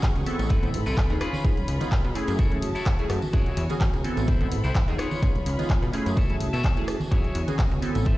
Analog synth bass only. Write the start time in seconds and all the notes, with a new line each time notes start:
0.16 C#2
0.39 A1
0.63 A1
0.74 A2
0.87 C2
1.10 D#2
1.44 C#2
1.68 C#2
2.05 B2
2.28 F#2
2.62 F#1
3.10 F#2
3.33 E2
3.57 E2
3.93 C#2
4.17 A1
4.41 A1
4.51 A2
4.64 C2
4.88 D#2
5.22 C#2
5.46 C#2
5.82 B2
6.06 F#2
6.17 F#1
6.41 C#2
6.53 B2
7.12 E2
7.35 E2
7.72 C#2
7.95 A1